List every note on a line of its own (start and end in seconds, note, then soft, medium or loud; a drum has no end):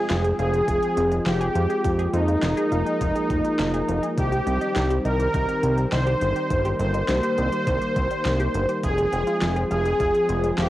0.00 4.13 F3 medium
0.00 4.13 G#3 medium
0.00 1.82 C4 medium
0.00 0.27 G#4 loud
0.10 0.33 F1 loud
0.10 0.16 F4 medium
0.10 snare loud
0.10 closed hi-hat medium
0.24 0.31 G#4 loud
0.24 closed hi-hat soft
0.39 0.62 F1 medium
0.39 1.15 G#4 loud
0.39 0.49 F5 medium
0.39 closed hi-hat soft
0.53 0.64 G#4 medium
0.53 closed hi-hat soft
0.68 0.80 F1 medium
0.68 0.82 F4 medium
0.68 kick loud
0.68 closed hi-hat medium
0.83 0.93 G#4 medium
0.83 closed hi-hat soft
0.97 1.20 F1 medium
0.97 1.07 C4 medium
0.97 closed hi-hat medium
1.12 1.18 G#3 medium
1.12 closed hi-hat soft
1.26 1.49 F1 loud
1.26 1.37 F3 loud
1.26 2.02 G4 loud
1.26 snare loud
1.26 closed hi-hat medium
1.41 1.47 G#4 loud
1.41 closed hi-hat soft
1.55 1.67 F2 medium
1.55 1.66 F3 medium
1.55 closed hi-hat medium
1.70 1.80 G#4 medium
1.70 closed hi-hat soft
1.84 2.08 F2 medium
1.84 1.95 F3 medium
1.84 4.15 A#3 medium
1.84 kick loud
1.84 closed hi-hat medium
1.99 2.13 G#4 loud
1.99 closed hi-hat soft
2.13 2.37 F2 loud
2.13 2.24 C4 medium
2.13 4.06 D#4 loud
2.13 closed hi-hat medium
2.28 2.39 F4 medium
2.28 closed hi-hat soft
2.43 2.54 F1 loud
2.43 2.49 F4 medium
2.43 snare loud
2.43 closed hi-hat medium
2.57 2.63 G#4 loud
2.57 closed hi-hat soft
2.72 2.84 F1 medium
2.72 2.82 F5 medium
2.72 closed hi-hat soft
2.86 2.97 G#4 medium
2.86 closed hi-hat soft
3.01 3.13 F1 loud
3.01 3.15 F4 medium
3.01 kick loud
3.01 closed hi-hat medium
3.15 3.26 G#4 medium
3.15 closed hi-hat soft
3.30 3.42 F1 medium
3.30 3.40 C4 medium
3.30 kick loud
3.30 closed hi-hat medium
3.45 3.51 G#3 medium
3.45 closed hi-hat soft
3.59 3.82 F1 medium
3.59 3.70 F3 loud
3.59 snare loud
3.59 closed hi-hat medium
3.74 3.80 G#4 loud
3.74 closed hi-hat soft
3.88 4.00 F1 loud
3.88 3.99 F3 medium
3.88 closed hi-hat medium
4.03 4.13 G#4 medium
4.03 closed hi-hat soft
4.17 4.41 C2 loud
4.17 4.28 D#3 medium
4.17 8.79 D#3 medium
4.17 8.80 G3 medium
4.17 6.48 C4 medium
4.17 4.93 G4 loud
4.17 kick loud
4.17 closed hi-hat medium
4.32 4.46 G4 loud
4.32 closed hi-hat soft
4.47 4.58 C2 medium
4.47 4.57 C4 medium
4.47 closed hi-hat medium
4.61 4.72 D#4 medium
4.61 closed hi-hat soft
4.76 4.99 C2 loud
4.76 4.82 D#4 medium
4.76 snare loud
4.76 closed hi-hat medium
4.90 4.97 G4 loud
4.90 closed hi-hat soft
5.05 5.28 C2 loud
5.05 5.81 A#4 loud
5.05 5.15 D#5 medium
5.05 closed hi-hat soft
5.19 5.30 G4 medium
5.19 closed hi-hat soft
5.34 5.46 C2 medium
5.34 5.48 D#4 medium
5.34 kick loud
5.34 closed hi-hat medium
5.49 5.59 G4 medium
5.49 closed hi-hat soft
5.63 5.86 C2 medium
5.63 5.74 C4 medium
5.63 closed hi-hat medium
5.78 5.84 G3 medium
5.78 closed hi-hat soft
5.92 6.16 C2 loud
5.92 6.03 D#3 loud
5.92 6.68 C5 medium
5.92 snare loud
5.92 closed hi-hat medium
6.07 6.13 G4 loud
6.07 closed hi-hat soft
6.21 6.33 G1 medium
6.21 6.32 D#3 medium
6.21 closed hi-hat medium
6.36 6.46 G4 medium
6.36 closed hi-hat soft
6.50 6.74 G1 medium
6.50 6.61 D#3 medium
6.50 8.81 A#3 medium
6.50 kick loud
6.50 closed hi-hat medium
6.65 6.79 G4 loud
6.65 closed hi-hat soft
6.80 7.03 G1 loud
6.80 6.90 C4 medium
6.80 8.72 C5 loud
6.80 closed hi-hat medium
6.94 7.05 D#4 medium
6.94 closed hi-hat soft
7.09 7.20 C2 medium
7.09 7.15 D#4 medium
7.09 snare loud
7.09 closed hi-hat medium
7.23 7.30 G4 loud
7.23 closed hi-hat soft
7.38 7.50 C2 medium
7.38 7.48 D#5 medium
7.38 closed hi-hat soft
7.52 7.63 G4 medium
7.52 closed hi-hat soft
7.67 7.79 C2 loud
7.67 7.81 D#4 medium
7.67 kick loud
7.67 closed hi-hat medium
7.82 7.92 G4 medium
7.82 closed hi-hat soft
7.96 8.08 C2 medium
7.96 8.07 C4 medium
7.96 kick loud
7.96 closed hi-hat medium
8.11 8.17 G3 medium
8.11 closed hi-hat soft
8.25 8.49 C2 medium
8.25 8.36 D#3 loud
8.25 snare loud
8.25 closed hi-hat medium
8.40 8.46 G4 loud
8.40 closed hi-hat soft
8.54 8.66 G1 medium
8.54 8.65 D#3 medium
8.54 closed hi-hat medium
8.69 8.79 G4 medium
8.69 closed hi-hat soft
8.83 9.07 F1 loud
8.83 8.94 F3 medium
8.83 10.69 F3 medium
8.83 10.69 G#3 medium
8.83 10.69 C4 medium
8.83 9.59 G#4 loud
8.83 kick loud
8.83 closed hi-hat medium
8.98 9.12 G#4 loud
8.98 closed hi-hat soft
9.13 9.24 F1 medium
9.13 9.23 C4 medium
9.13 closed hi-hat medium
9.27 9.38 F4 medium
9.27 closed hi-hat soft
9.42 9.65 F1 loud
9.42 9.48 F4 medium
9.42 snare loud
9.42 closed hi-hat medium
9.56 9.63 G#4 loud
9.56 closed hi-hat soft
9.71 9.94 F1 medium
9.71 10.47 G#4 loud
9.71 9.81 F5 medium
9.71 closed hi-hat soft
9.85 9.96 G#4 medium
9.85 closed hi-hat soft
10.00 10.12 F1 medium
10.00 10.14 F4 medium
10.00 kick loud
10.00 closed hi-hat medium
10.15 10.25 G#4 medium
10.15 closed hi-hat soft
10.29 10.52 F1 medium
10.29 10.40 C4 medium
10.29 closed hi-hat medium
10.44 10.50 G#3 medium
10.44 closed hi-hat soft
10.58 10.69 F1 medium
10.58 10.69 F3 loud
10.58 10.69 G4 medium
10.58 snare loud
10.58 closed hi-hat medium